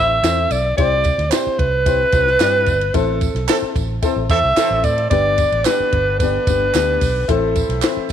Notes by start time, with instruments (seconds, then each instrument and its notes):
Already playing: fingered electric bass A1, upright piano C4 E4 A4 C5
0.00 alto saxophone E5
0.23 fingered electric bass E2, upright piano C4 E4 A4 C5, snare, clap, ride, tambourine
0.50 fingered electric bass B1, alto saxophone D5, ride, tambourine
0.77 fingered electric bass C2, upright piano C4 E4 G4 C5, alto saxophone D5, kick, ride, tambourine
1.04 kick, ride, tambourine
1.18 fingered electric bass D2, snare, ride
1.31 upright piano C4 E4 G4 C5, alto saxophone C5, snare, clap, ride, tambourine
1.47 muted fingered electric bass stroke
1.59 fingered electric bass C2, alto saxophone B4, kick, ride
1.86 upright piano C4 E4 G4 C5, kick, ride, tambourine
2.12 fingered electric bass C2, upright piano C4 E4 G4 C5, kick, ride, tambourine
2.27 snare
2.40 fingered electric bass G2, upright piano C4 E4 G4 D5, snare, clap, ride, tambourine
2.66 fingered electric bass G1, kick, ride, tambourine
2.81 ride
2.94 fingered electric bass A1, upright piano C4 E4 A4 C5, alto saxophone A4, kick, ride, tambourine
3.21 kick, ride, tambourine
3.35 fingered electric bass B1, snare, ride
3.48 horn section E3 C4 A4, upright piano C4 E4 A4 C5, snare, clap, ride, tambourine
3.62 muted fingered electric bass stroke
3.76 fingered electric bass A1, kick, ride, tambourine
4.02 horn section E3 C4 A4, upright piano C4 E4 A4 C5, kick, ride, tambourine
4.16 fingered electric bass A1
4.29 fingered electric bass E2, horn section E3 C4 A4, upright piano C4 E4 A4 C5, alto saxophone E5, kick, ride, tambourine
4.44 fingered electric bass C2
4.56 horn section E3 C4 A4, upright piano C4 E4 A4 C5, snare, clap, ride, tambourine
4.70 fingered electric bass A1
4.84 fingered electric bass A2, alto saxophone D5, kick, ride, tambourine
4.98 ride
5.10 fingered electric bass G1, tonewheel organ D3 G3 B3 D4, upright piano B3 D4 G4 B4, alto saxophone D5, kick, ride, tambourine
5.38 kick, ride, tambourine
5.52 fingered electric bass A1, ride
5.65 upright piano B3 D4 G4 B4, alto saxophone B4, snare, clap, ride, tambourine
5.80 muted fingered electric bass stroke
5.92 fingered electric bass G1, kick, ride
6.19 upright piano B3 D4 G4 D5, alto saxophone B4, kick, ride, tambourine
6.47 fingered electric bass G1, upright piano B3 D4 G4 B4, kick, ride, tambourine
6.74 fingered electric bass D2, upright piano B3 D4 G4 B4, snare, clap, ride, tambourine
7.01 fingered electric bass B1, kick, open hi-hat, ride, tambourine
7.28 fingered electric bass A1, tonewheel organ E3 A3 C4 E4, upright piano C4 E4 A4 C5, alto saxophone A4, kick, hi-hat pedal, ride, tambourine
7.55 kick, ride, tambourine
7.69 fingered electric bass B1, snare, ride
7.82 upright piano C4 E4 A4 C5, snare, clap, ride, tambourine
7.97 muted fingered electric bass stroke
8.09 tambourine